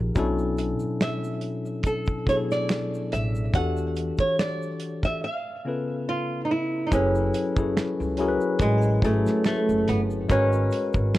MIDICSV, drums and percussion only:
0, 0, Header, 1, 2, 480
1, 0, Start_track
1, 0, Tempo, 845070
1, 89, Time_signature, 4, 2, 24, 8
1, 6351, End_track
2, 0, Start_track
2, 0, Title_t, "Drums"
2, 87, Note_on_c, 9, 82, 64
2, 89, Note_on_c, 9, 36, 101
2, 91, Note_on_c, 9, 42, 72
2, 144, Note_off_c, 9, 82, 0
2, 146, Note_off_c, 9, 36, 0
2, 148, Note_off_c, 9, 42, 0
2, 218, Note_on_c, 9, 82, 47
2, 275, Note_off_c, 9, 82, 0
2, 325, Note_on_c, 9, 82, 43
2, 331, Note_on_c, 9, 42, 72
2, 382, Note_off_c, 9, 82, 0
2, 388, Note_off_c, 9, 42, 0
2, 450, Note_on_c, 9, 82, 42
2, 507, Note_off_c, 9, 82, 0
2, 572, Note_on_c, 9, 26, 61
2, 572, Note_on_c, 9, 38, 106
2, 572, Note_on_c, 9, 82, 63
2, 577, Note_on_c, 9, 42, 71
2, 628, Note_off_c, 9, 38, 0
2, 629, Note_off_c, 9, 26, 0
2, 629, Note_off_c, 9, 82, 0
2, 634, Note_off_c, 9, 42, 0
2, 703, Note_on_c, 9, 82, 42
2, 760, Note_off_c, 9, 82, 0
2, 802, Note_on_c, 9, 42, 58
2, 858, Note_off_c, 9, 42, 0
2, 940, Note_on_c, 9, 82, 39
2, 997, Note_off_c, 9, 82, 0
2, 1040, Note_on_c, 9, 42, 71
2, 1043, Note_on_c, 9, 36, 89
2, 1053, Note_on_c, 9, 82, 66
2, 1097, Note_off_c, 9, 42, 0
2, 1100, Note_off_c, 9, 36, 0
2, 1109, Note_off_c, 9, 82, 0
2, 1169, Note_on_c, 9, 82, 45
2, 1179, Note_on_c, 9, 36, 80
2, 1226, Note_off_c, 9, 82, 0
2, 1235, Note_off_c, 9, 36, 0
2, 1287, Note_on_c, 9, 36, 82
2, 1298, Note_on_c, 9, 82, 41
2, 1299, Note_on_c, 9, 42, 62
2, 1343, Note_off_c, 9, 36, 0
2, 1354, Note_off_c, 9, 82, 0
2, 1356, Note_off_c, 9, 42, 0
2, 1426, Note_on_c, 9, 82, 43
2, 1427, Note_on_c, 9, 38, 36
2, 1482, Note_off_c, 9, 82, 0
2, 1483, Note_off_c, 9, 38, 0
2, 1528, Note_on_c, 9, 26, 63
2, 1528, Note_on_c, 9, 82, 61
2, 1533, Note_on_c, 9, 38, 99
2, 1537, Note_on_c, 9, 42, 71
2, 1584, Note_off_c, 9, 26, 0
2, 1584, Note_off_c, 9, 82, 0
2, 1590, Note_off_c, 9, 38, 0
2, 1594, Note_off_c, 9, 42, 0
2, 1670, Note_on_c, 9, 82, 49
2, 1727, Note_off_c, 9, 82, 0
2, 1772, Note_on_c, 9, 42, 73
2, 1782, Note_on_c, 9, 82, 42
2, 1829, Note_off_c, 9, 42, 0
2, 1839, Note_off_c, 9, 82, 0
2, 1904, Note_on_c, 9, 82, 43
2, 1961, Note_off_c, 9, 82, 0
2, 2010, Note_on_c, 9, 36, 112
2, 2010, Note_on_c, 9, 82, 63
2, 2011, Note_on_c, 9, 42, 74
2, 2067, Note_off_c, 9, 36, 0
2, 2067, Note_off_c, 9, 82, 0
2, 2068, Note_off_c, 9, 42, 0
2, 2142, Note_on_c, 9, 82, 44
2, 2199, Note_off_c, 9, 82, 0
2, 2250, Note_on_c, 9, 82, 42
2, 2253, Note_on_c, 9, 42, 68
2, 2306, Note_off_c, 9, 82, 0
2, 2310, Note_off_c, 9, 42, 0
2, 2373, Note_on_c, 9, 82, 43
2, 2378, Note_on_c, 9, 36, 90
2, 2430, Note_off_c, 9, 82, 0
2, 2434, Note_off_c, 9, 36, 0
2, 2494, Note_on_c, 9, 38, 99
2, 2495, Note_on_c, 9, 26, 64
2, 2495, Note_on_c, 9, 82, 60
2, 2500, Note_on_c, 9, 42, 74
2, 2551, Note_off_c, 9, 38, 0
2, 2552, Note_off_c, 9, 26, 0
2, 2552, Note_off_c, 9, 82, 0
2, 2557, Note_off_c, 9, 42, 0
2, 2625, Note_on_c, 9, 82, 41
2, 2682, Note_off_c, 9, 82, 0
2, 2724, Note_on_c, 9, 42, 63
2, 2780, Note_off_c, 9, 42, 0
2, 2857, Note_on_c, 9, 36, 83
2, 2859, Note_on_c, 9, 82, 42
2, 2863, Note_on_c, 9, 38, 29
2, 2914, Note_off_c, 9, 36, 0
2, 2915, Note_off_c, 9, 82, 0
2, 2920, Note_off_c, 9, 38, 0
2, 3929, Note_on_c, 9, 36, 123
2, 3930, Note_on_c, 9, 82, 80
2, 3931, Note_on_c, 9, 42, 86
2, 3986, Note_off_c, 9, 36, 0
2, 3987, Note_off_c, 9, 82, 0
2, 3988, Note_off_c, 9, 42, 0
2, 4061, Note_on_c, 9, 82, 52
2, 4118, Note_off_c, 9, 82, 0
2, 4168, Note_on_c, 9, 82, 49
2, 4170, Note_on_c, 9, 42, 80
2, 4225, Note_off_c, 9, 82, 0
2, 4227, Note_off_c, 9, 42, 0
2, 4295, Note_on_c, 9, 82, 47
2, 4296, Note_on_c, 9, 36, 107
2, 4352, Note_off_c, 9, 82, 0
2, 4353, Note_off_c, 9, 36, 0
2, 4411, Note_on_c, 9, 38, 114
2, 4414, Note_on_c, 9, 26, 71
2, 4414, Note_on_c, 9, 82, 70
2, 4417, Note_on_c, 9, 42, 76
2, 4468, Note_off_c, 9, 38, 0
2, 4471, Note_off_c, 9, 26, 0
2, 4471, Note_off_c, 9, 82, 0
2, 4473, Note_off_c, 9, 42, 0
2, 4545, Note_on_c, 9, 82, 44
2, 4602, Note_off_c, 9, 82, 0
2, 4641, Note_on_c, 9, 42, 67
2, 4648, Note_on_c, 9, 82, 41
2, 4698, Note_off_c, 9, 42, 0
2, 4705, Note_off_c, 9, 82, 0
2, 4776, Note_on_c, 9, 82, 49
2, 4833, Note_off_c, 9, 82, 0
2, 4880, Note_on_c, 9, 42, 83
2, 4883, Note_on_c, 9, 36, 104
2, 4891, Note_on_c, 9, 82, 78
2, 4937, Note_off_c, 9, 42, 0
2, 4940, Note_off_c, 9, 36, 0
2, 4948, Note_off_c, 9, 82, 0
2, 5010, Note_on_c, 9, 82, 53
2, 5067, Note_off_c, 9, 82, 0
2, 5126, Note_on_c, 9, 36, 96
2, 5136, Note_on_c, 9, 82, 48
2, 5140, Note_on_c, 9, 42, 64
2, 5183, Note_off_c, 9, 36, 0
2, 5193, Note_off_c, 9, 82, 0
2, 5197, Note_off_c, 9, 42, 0
2, 5263, Note_on_c, 9, 82, 45
2, 5266, Note_on_c, 9, 38, 41
2, 5319, Note_off_c, 9, 82, 0
2, 5322, Note_off_c, 9, 38, 0
2, 5367, Note_on_c, 9, 26, 68
2, 5367, Note_on_c, 9, 82, 71
2, 5373, Note_on_c, 9, 38, 103
2, 5377, Note_on_c, 9, 42, 73
2, 5424, Note_off_c, 9, 26, 0
2, 5424, Note_off_c, 9, 82, 0
2, 5429, Note_off_c, 9, 38, 0
2, 5433, Note_off_c, 9, 42, 0
2, 5507, Note_on_c, 9, 82, 51
2, 5564, Note_off_c, 9, 82, 0
2, 5612, Note_on_c, 9, 42, 81
2, 5619, Note_on_c, 9, 82, 49
2, 5668, Note_off_c, 9, 42, 0
2, 5676, Note_off_c, 9, 82, 0
2, 5741, Note_on_c, 9, 82, 44
2, 5798, Note_off_c, 9, 82, 0
2, 5849, Note_on_c, 9, 36, 120
2, 5849, Note_on_c, 9, 82, 76
2, 5853, Note_on_c, 9, 42, 86
2, 5906, Note_off_c, 9, 36, 0
2, 5906, Note_off_c, 9, 82, 0
2, 5909, Note_off_c, 9, 42, 0
2, 5980, Note_on_c, 9, 82, 55
2, 6037, Note_off_c, 9, 82, 0
2, 6084, Note_on_c, 9, 82, 49
2, 6092, Note_on_c, 9, 42, 75
2, 6141, Note_off_c, 9, 82, 0
2, 6149, Note_off_c, 9, 42, 0
2, 6210, Note_on_c, 9, 82, 52
2, 6216, Note_on_c, 9, 36, 98
2, 6267, Note_off_c, 9, 82, 0
2, 6273, Note_off_c, 9, 36, 0
2, 6330, Note_on_c, 9, 38, 119
2, 6331, Note_on_c, 9, 26, 70
2, 6331, Note_on_c, 9, 82, 72
2, 6351, Note_off_c, 9, 26, 0
2, 6351, Note_off_c, 9, 38, 0
2, 6351, Note_off_c, 9, 82, 0
2, 6351, End_track
0, 0, End_of_file